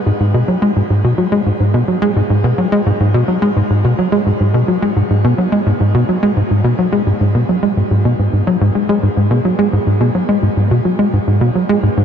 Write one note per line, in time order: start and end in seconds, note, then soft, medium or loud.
0.06 0.12 G#2 medium
0.20 0.33 G#2 medium
0.34 0.43 B2 medium
0.48 0.57 F#3 medium
0.62 0.71 G#3 loud
0.76 0.82 G#2 medium
0.90 1.03 G#2 medium
1.04 1.14 B2 medium
1.18 1.27 F#3 medium
1.32 1.42 G#3 loud
1.46 1.52 G#2 medium
1.60 1.73 G#2 medium
1.74 1.83 B2 medium
1.88 1.98 F#3 medium
2.02 2.12 G#3 loud
2.16 2.22 G#2 medium
2.30 2.43 G#2 medium
2.44 2.54 B2 medium
2.58 2.68 F#3 medium
2.72 2.82 G#3 loud
2.86 2.92 G#2 medium
3.00 3.14 G#2 medium
3.14 3.24 B2 loud
3.28 3.38 F#3 medium
3.42 3.52 G#3 loud
3.56 3.62 G#2 medium
3.70 3.84 G#2 medium
3.84 3.94 B2 loud
3.98 4.08 F#3 medium
4.12 4.22 G#3 loud
4.26 4.32 G#2 medium
4.40 4.54 G#2 medium
4.54 4.64 B2 loud
4.68 4.78 F#3 medium
4.82 4.92 G#3 loud
4.96 5.02 G#2 medium
5.10 5.24 G#2 medium
5.24 5.34 B2 loud
5.38 5.48 F#3 medium
5.52 5.62 G#3 medium
5.66 5.72 G#2 medium
5.80 5.94 G#2 medium
5.94 6.04 B2 loud
6.09 6.18 F#3 medium
6.23 6.32 G#3 medium
6.37 6.42 G#2 medium
6.51 6.64 G#2 medium
6.64 6.74 B2 loud
6.79 6.88 F#3 medium
6.92 7.02 G#3 loud
7.07 7.12 G#2 medium
7.21 7.34 G#2 medium
7.35 7.44 B2 medium
7.49 7.58 F#3 medium
7.63 7.72 G#3 loud
7.77 7.83 G#2 medium
7.91 8.04 G#2 medium
8.05 8.14 B2 loud
8.19 8.28 G#2 medium
8.33 8.42 G#2 medium
8.47 8.57 F#3 loud
8.61 8.71 G#2 loud
8.75 8.88 G#3 medium
8.89 8.99 G#3 loud
9.03 9.09 G#2 medium
9.17 9.30 G#2 medium
9.31 9.40 B2 loud
9.45 9.54 F#3 medium
9.59 9.68 G#3 loud
9.73 9.79 G#2 medium
9.87 10.00 G#2 medium
10.00 10.10 B2 loud
10.15 10.24 F#3 medium
10.29 10.38 G#3 loud
10.43 10.49 G#2 medium
10.57 10.70 G#2 medium
10.71 10.81 B2 loud
10.85 10.95 F#3 medium
10.99 11.09 G#3 loud
11.13 11.19 G#2 medium
11.27 11.40 G#2 medium
11.41 11.51 B2 loud
11.55 11.65 F#3 medium
11.69 11.79 G#3 loud
11.83 11.89 G#2 medium
11.97 12.05 G#2 medium